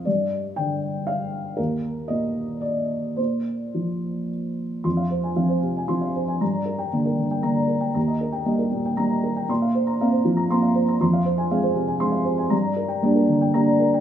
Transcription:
X:1
M:3/4
L:1/16
Q:1/4=117
K:Fdor
V:1 name="Felt piano"
d4 g4 f4 | B4 e4 d4 | c8 z4 | c' f c a f c C, a c' f c a |
b d B g d B D, g b d B g | b e B g e B B,, g b e B g | c' f c b f c F, b c' f c b | c' f c a f c C, a c' f c a |
b d B g d B D, g b d B g |]
V:2 name="Felt piano" clef=bass
G,,4 D,8 | E,,4 B,,8 | B,,4 F,8 | F,,4 [F,C]4 [F,C]4 |
G,,4 [D,B,]4 [D,B,]4 | E,,4 [G,B,]4 [G,B,]4 | B,,4 [B,C]4 [B,C]4 | F,,4 [A,C]4 [A,C]4 |
G,,4 [G,B,D]4 [G,B,D]4 |]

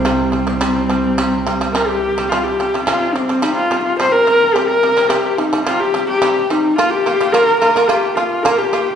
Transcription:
X:1
M:4/4
L:1/16
Q:1/4=107
K:none
V:1 name="Horsehead fiddle"
C12 _B G3 | F G3 F2 C2 _E F2 F c _B3 | G _B3 G2 _E2 F G2 G3 E2 | F G3 _B2 B2 G2 F2 B G3 |]
V:2 name="Shamisen" clef=bass
[C,G,]2 [C,G,] [C,G,] [C,G,]2 [C,G,]2 [C,G,]2 [C,G,] [C,G,] [C,G,]2 z [C,G,] | [C,G,]2 [C,G,] [C,G,] [C,G,]2 [C,G,] [C,G,] [C,G,]2 [C,G,]2 [C,G,]2 [C,G,]2 | [C,G,]2 [C,G,] [C,G,] [C,G,]2 [C,G,] [C,G,] [C,G,]2 [C,G,]2 [C,G,]2 [C,G,]2 | [_B,F]2 [B,F] [B,F] [B,F]2 [B,F] [B,F] [B,F]2 [B,F]2 [B,F]2 [B,F]2 |]
V:3 name="Double bass" clef=bass
C,,16 | z16 | z16 | z16 |]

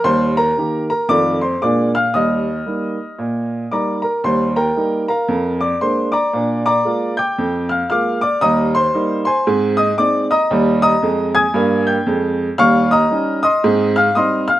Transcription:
X:1
M:4/4
L:1/8
Q:"Swing" 1/4=115
K:Eb
V:1 name="Upright piano"
[cc'] [Bb]2 [Bb] [dd'] [cc'] [dd'] [ff'] | [ee']6 [dbd'] [Bb] | [cc'] [Bgb]2 [Bfb]2 [dd'] [cc'] [dbd']- | [dbd'] [dbd']2 [gd'g']2 [ff'] [fd'f'] [dd'] |
[ebe'] [cc']2 [cac']2 [ee'] [dd'] [ebe']- | [ebe'] [ebe']2 [ae'a']2 [gg'] z2 | [f_d'f'] [ebe']2 [ec'e']2 [ff'] [ec'e'] [ff'] |]
V:2 name="Upright piano" clef=bass
[E,,G,]2 [E,G]2 [F,,E,=A,F]2 [B,,_A,B,DF]2 | [E,,G,]2 [G,B,E]2 B,,2 [G,B,E]2 | [E,,G,]2 [G,B,E]2 F,,2 [A,B,D]2 | [B,,D]2 [A,B,F]2 F,,2 [A,B,F]2 |
[E,,G,]2 [G,B,E]2 [A,,C]2 [A,CE]2 | [E,,G,]2 [F,,A,]2 [G,,B,]2 [F,,A,]2 | [E,,G,]2 [G,_DE]2 [A,,C]2 [G,CE]2 |]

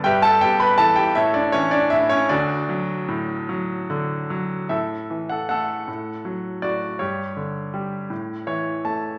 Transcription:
X:1
M:6/8
L:1/16
Q:3/8=53
K:D
V:1 name="Grand piano"
[GBeg] [Aa] [Gg] [Bb] [Aa] [Gg] [EAce] [Dd] [Cc] [Dd] [Ee] [Cc] | [DFAd]8 z4 | [Ae]3 [Af] [Af]6 [Fd]2 | [Gc]8- [Gc]2 z2 |]
V:2 name="Grand piano" clef=bass
G,,2 B,2 E,2 A,,2 E,2 A,,2 | D,,2 F,2 A,,2 F,2 D,2 F,2 | A,,2 E,2 A,2 A,,2 F,2 A,,2 | G,,2 D,2 G,2 A,,2 [E,c]2 [A,a]2 |]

